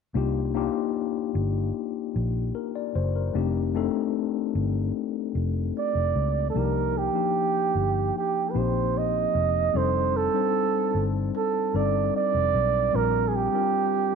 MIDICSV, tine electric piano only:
0, 0, Header, 1, 2, 480
1, 0, Start_track
1, 0, Key_signature, -3, "minor"
1, 0, Tempo, 798935
1, 93, Time_signature, 4, 2, 24, 8
1, 8501, End_track
2, 0, Start_track
2, 0, Title_t, "Tine electric piano"
2, 0, Program_c, 0, 4
2, 87, Note_on_c, 0, 58, 75
2, 90, Note_on_c, 0, 62, 63
2, 93, Note_on_c, 0, 63, 62
2, 98, Note_on_c, 0, 65, 64
2, 102, Note_on_c, 0, 67, 81
2, 216, Control_c, 0, 64, 127
2, 289, Note_off_c, 0, 58, 0
2, 291, Note_off_c, 0, 62, 0
2, 292, Note_off_c, 0, 63, 0
2, 295, Note_off_c, 0, 65, 0
2, 297, Note_off_c, 0, 67, 0
2, 327, Note_on_c, 0, 58, 81
2, 330, Note_on_c, 0, 62, 67
2, 334, Note_on_c, 0, 63, 68
2, 337, Note_on_c, 0, 65, 70
2, 342, Note_on_c, 0, 67, 89
2, 1127, Note_off_c, 0, 58, 0
2, 1129, Note_off_c, 0, 62, 0
2, 1131, Note_off_c, 0, 63, 0
2, 1133, Note_off_c, 0, 65, 0
2, 1135, Note_off_c, 0, 67, 0
2, 1532, Note_on_c, 0, 70, 56
2, 1647, Note_off_c, 0, 70, 0
2, 1655, Note_on_c, 0, 74, 59
2, 1769, Note_off_c, 0, 74, 0
2, 1775, Note_on_c, 0, 72, 63
2, 1889, Note_off_c, 0, 72, 0
2, 1897, Note_on_c, 0, 70, 53
2, 2005, Note_on_c, 0, 57, 71
2, 2011, Note_on_c, 0, 60, 65
2, 2014, Note_on_c, 0, 62, 64
2, 2018, Note_on_c, 0, 63, 63
2, 2021, Note_on_c, 0, 67, 77
2, 2022, Control_c, 0, 64, 0
2, 2113, Control_c, 0, 64, 127
2, 2124, Note_off_c, 0, 70, 0
2, 2209, Note_off_c, 0, 57, 0
2, 2212, Note_off_c, 0, 60, 0
2, 2214, Note_off_c, 0, 62, 0
2, 2216, Note_off_c, 0, 63, 0
2, 2217, Note_off_c, 0, 67, 0
2, 2250, Note_on_c, 0, 57, 79
2, 2255, Note_on_c, 0, 60, 71
2, 2258, Note_on_c, 0, 62, 74
2, 2261, Note_on_c, 0, 63, 67
2, 2264, Note_on_c, 0, 69, 80
2, 3049, Note_off_c, 0, 57, 0
2, 3052, Note_off_c, 0, 60, 0
2, 3053, Note_off_c, 0, 62, 0
2, 3055, Note_off_c, 0, 63, 0
2, 3057, Note_off_c, 0, 69, 0
2, 3929, Note_on_c, 0, 53, 62
2, 3934, Note_on_c, 0, 58, 57
2, 3938, Note_on_c, 0, 62, 53
2, 3941, Note_on_c, 0, 63, 60
2, 3944, Control_c, 0, 64, 0
2, 3946, Note_on_c, 0, 67, 68
2, 4037, Control_c, 0, 64, 127
2, 4231, Note_off_c, 0, 53, 0
2, 4234, Note_off_c, 0, 58, 0
2, 4235, Note_off_c, 0, 62, 0
2, 4237, Note_off_c, 0, 63, 0
2, 4239, Note_off_c, 0, 67, 0
2, 4285, Note_on_c, 0, 53, 60
2, 4289, Note_on_c, 0, 58, 52
2, 4294, Note_on_c, 0, 62, 52
2, 4298, Note_on_c, 0, 63, 54
2, 4301, Note_on_c, 0, 67, 61
2, 4987, Note_off_c, 0, 53, 0
2, 4990, Note_off_c, 0, 58, 0
2, 4992, Note_off_c, 0, 62, 0
2, 4994, Note_off_c, 0, 63, 0
2, 4995, Note_off_c, 0, 67, 0
2, 5127, Note_on_c, 0, 53, 60
2, 5130, Note_on_c, 0, 58, 54
2, 5135, Note_on_c, 0, 60, 56
2, 5138, Note_on_c, 0, 63, 57
2, 5142, Note_on_c, 0, 67, 69
2, 5729, Note_off_c, 0, 53, 0
2, 5730, Note_off_c, 0, 58, 0
2, 5733, Note_off_c, 0, 60, 0
2, 5734, Note_off_c, 0, 63, 0
2, 5736, Note_off_c, 0, 67, 0
2, 5848, Note_on_c, 0, 55, 62
2, 5852, Note_on_c, 0, 60, 58
2, 5857, Note_on_c, 0, 62, 58
2, 5861, Note_on_c, 0, 63, 60
2, 5864, Control_c, 0, 64, 0
2, 5864, Note_on_c, 0, 69, 67
2, 5962, Control_c, 0, 64, 127
2, 6151, Note_off_c, 0, 55, 0
2, 6152, Note_off_c, 0, 60, 0
2, 6155, Note_off_c, 0, 62, 0
2, 6157, Note_off_c, 0, 63, 0
2, 6158, Note_off_c, 0, 69, 0
2, 6209, Note_on_c, 0, 55, 63
2, 6214, Note_on_c, 0, 60, 58
2, 6216, Note_on_c, 0, 62, 57
2, 6222, Note_on_c, 0, 63, 52
2, 6225, Note_on_c, 0, 72, 67
2, 6909, Note_off_c, 0, 55, 0
2, 6912, Note_off_c, 0, 60, 0
2, 6913, Note_off_c, 0, 62, 0
2, 6916, Note_off_c, 0, 63, 0
2, 6917, Note_off_c, 0, 72, 0
2, 7049, Note_on_c, 0, 55, 63
2, 7052, Note_on_c, 0, 60, 59
2, 7056, Note_on_c, 0, 62, 54
2, 7061, Note_on_c, 0, 63, 55
2, 7063, Note_on_c, 0, 69, 73
2, 7649, Note_off_c, 0, 55, 0
2, 7651, Note_off_c, 0, 60, 0
2, 7653, Note_off_c, 0, 62, 0
2, 7655, Note_off_c, 0, 63, 0
2, 7657, Note_off_c, 0, 69, 0
2, 7765, Note_on_c, 0, 55, 63
2, 7771, Note_on_c, 0, 60, 57
2, 7773, Note_on_c, 0, 62, 56
2, 7778, Note_on_c, 0, 65, 57
2, 7781, Note_on_c, 0, 70, 70
2, 7783, Control_c, 0, 64, 0
2, 7873, Control_c, 0, 64, 127
2, 8069, Note_off_c, 0, 55, 0
2, 8072, Note_off_c, 0, 60, 0
2, 8073, Note_off_c, 0, 62, 0
2, 8076, Note_off_c, 0, 65, 0
2, 8077, Note_off_c, 0, 70, 0
2, 8127, Note_on_c, 0, 55, 63
2, 8129, Note_on_c, 0, 60, 55
2, 8136, Note_on_c, 0, 62, 61
2, 8140, Note_on_c, 0, 65, 58
2, 8142, Note_on_c, 0, 70, 66
2, 8501, Note_off_c, 0, 55, 0
2, 8501, Note_off_c, 0, 60, 0
2, 8501, Note_off_c, 0, 62, 0
2, 8501, Note_off_c, 0, 65, 0
2, 8501, Note_off_c, 0, 70, 0
2, 8501, End_track
0, 0, End_of_file